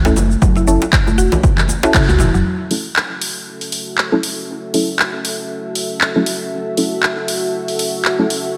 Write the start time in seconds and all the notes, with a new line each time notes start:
Already playing: C#2
0.05 A3 C#4 E4 A4, djembe slap, cabasa
0.16 F#1, muted conga, djembe tone, high conga, cabasa
0.31 cabasa
0.42 F#1 F#3, kick, high conga, djembe tone, cabasa
0.56 E4, muted conga, cabasa
0.67 F#1 C#4 E4 A4, cabasa
0.82 djembe slap, djembe tone, cabasa
0.93 kick, clap, muted conga, cabasa
1.07 A3, high conga, djembe tone, cabasa
1.18 E1 F#4, cabasa
1.32 djembe slap, muted conga, djembe tone, low conga, djembe bass, cabasa
1.43 kick, high conga, cabasa
1.57 clap, low conga, cabasa
1.68 muted conga, high conga, djembe tone, cabasa
1.83 C#4 E4 F#4 A4, djembe slap, cabasa
1.94 C#3 C#4, kick, clap, high tom, djembe tone, cabasa
2.08 C#2 F#4, high tom, high conga, cabasa
2.19 E1 E4, mid tom, muted conga, djembe tone, high conga, low conga, cabasa
2.34 E1 F#3, mid tom, cabasa
2.45 C#4 F#4 A4 E5
2.71 F#3 A3 C#4 E4 A4, open hi-hat
2.96 clap
3.21 open hi-hat
3.61 open hi-hat
3.72 open hi-hat
3.98 clap
4.12 F#3 A3 C#4 E4 A4
4.23 open hi-hat
4.74 F#3 A3 C#4 E4 A4, open hi-hat
4.99 clap
5.25 open hi-hat
5.75 open hi-hat
6.01 clap
6.16 F#3 A3 C#4 E4 A4
6.26 open hi-hat
6.77 F#3 A3 C#4 E4 A4, open hi-hat
7.03 clap
7.28 open hi-hat
7.68 open hi-hat
7.79 open hi-hat
8.05 clap
8.19 F#3 A3 C#4 E4 A4
8.30 open hi-hat